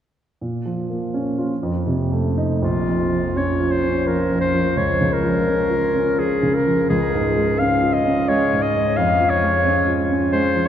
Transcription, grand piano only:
0.41 A#2
0.66 F3
0.90 A#3
1.14 C#4
1.38 F4
1.63 F2
1.87 C3
2.12 A3
2.37 D#4
2.62 A#1
2.87 F2
3.12 F3
3.36 C#4
3.60 F4
3.84 C#4
4.07 F3
4.31 F2
4.54 F3
4.77 C#2
5.01 C#3
5.23 F3
5.47 C#4
5.70 F4
5.95 C#4
6.18 F3
6.43 C#3
6.67 F3
6.90 C#2
7.14 G#2
7.37 G#3
7.60 C#4
7.82 F4
8.05 C#4
8.29 G#3
8.53 G#2
8.76 G#3
8.97 F2
9.20 F3
9.43 G#3
9.65 C#4
9.88 F4
10.10 C#4
10.32 G#3
10.55 F3

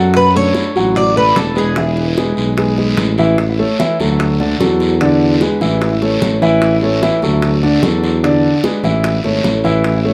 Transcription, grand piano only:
Already playing: F#3 F#4 F#5
0.35 A3 D4 A4
0.76 F#3 F#4 F#5
1.16 A3 A4 D5
1.56 G#3 G#4 B4
1.76 E3 E4 E5
2.17 G#3 G#4 B4
2.58 G#3 G#4 B4
2.78 G#3 G#4 B4
3.19 E3 E4 E5
3.59 A3 A4 C#5
3.79 E3 E4 E5
4.00 F#3 F#4 A4
4.40 D3 D4 D5
4.61 F#3 F#4 A4
5.01 D3 D4 D5
5.41 G#3 G#4 B4
5.61 E3 E4 E5
6.02 A3 A4 C#5
6.42 E3 E4 E5
6.82 A3 A4 C#5
7.02 E3 E4 E5
7.23 F#3 F#4 A4
7.63 D3 D4 D5
7.83 F#3 F#4 A4
8.23 D3 D4 D5
8.64 G#3 G#4 B4
8.84 E3 E4 E5
9.24 A3 A4 C#5
9.64 E3 E4 E5
10.05 A3 A4 C#5

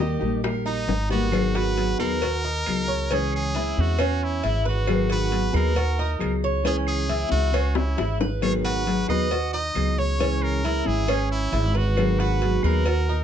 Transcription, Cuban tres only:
0.00 G4
0.44 A#4
0.66 D#4
1.10 B3
1.55 F#4
1.99 B4
2.22 F#4
2.44 D#4
2.88 C#5
3.11 C#4
3.55 E4
3.99 C#4
4.43 E4
4.65 B4
5.10 F#4
5.54 B4
5.77 F#4
5.99 D#4
6.44 C#5
6.65 C#4
7.09 E4
7.54 C#4
7.98 E4
8.21 B4
8.65 F#4
9.10 B4
9.32 F#4
9.54 D#4
9.98 C#5
10.20 C#4
10.64 E4
11.08 C#4
11.53 E4
11.75 B4
12.20 F#4
12.64 B4
12.86 F#4
13.09 D#4

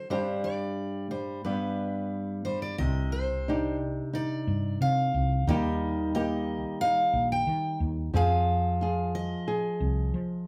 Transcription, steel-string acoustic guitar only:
0.11 C5
0.44 D5
1.11 C5
1.44 B4
2.45 C5
2.62 D5
2.78 D#5
3.12 C5
4.15 D5
4.82 F5
5.49 D#5
6.15 D#5
6.81 F5
7.32 G5
8.17 F5
9.15 D#5

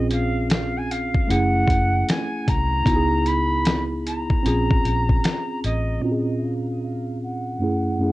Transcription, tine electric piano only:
Already playing: C4 C#4 F4 G#4
1.27 A3 C#4 E4
1.32 G#4
2.85 B3 D#4 E4
2.90 F#4
2.96 G#4
4.43 C4 C#4 F4
4.48 G#4
6.00 A#2 C4 C#4 F4
6.05 F#4
6.11 G#4
7.59 F#2 A3 C#4 E4
7.64 G#4
7.99 F#2 A3 C#4 E4
8.03 G#4

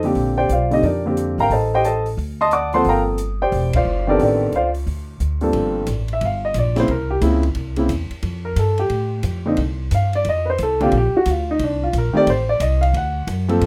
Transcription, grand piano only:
0.04 D3 A#3 C4 G4
0.37 G4 C5 D5 G5
0.52 F4 C5 D5 F5
0.71 D3 A#3 C4 D#4 G4 D#5
0.84 D4 G4 A#4 D5
1.06 D3 A#3 C4 G4
1.40 A#4 F5 G5 A#5
1.52 A4 C5 D#5 A5
1.74 G4 C5 D#5 G5
1.85 A4 C5 D#5 A5
2.41 D#5 A5 C6 D#6
2.52 D5 F#5 A5 D6
2.73 F3 A#3 C4 A4 C5 F#5 A5 C6
2.89 A#4 F5 G5 A#5
3.42 G4 C5 D5 G5
3.76 F4 C5 D5 F5
4.07 D#3 B3 C4 D4 G4 A4 A#4 D5
4.22 D4 A4 A#4 D5
4.56 F4 C5 D5 F5
5.41 G2 F3 A#3 C4 A4
6.13 E5
6.25 F5
6.45 D#5
6.58 D5
6.76 C#3 A#3 C4 E4
6.80 C5
6.91 A#4
7.11 G4
7.21 C#3 A#3 C4 E4
7.77 C#3 A#3 C4 E4
8.45 A#4
8.59 A4
8.79 G4
9.45 D3 A#3 C4 D#4
9.95 F5
10.15 D5
10.29 D#5
10.50 C5
10.63 A4
10.81 D3 A#3 C4 F4 G4
10.98 G4
11.17 F#4
11.30 F4
11.51 D#4
11.64 D4
11.83 F4
11.98 A#4
12.13 D#3 A3 C4 G4 D5
12.30 C5
12.49 D5
12.62 D#5
12.81 F5
12.97 F#5
13.48 F3 A#3 C4 A4

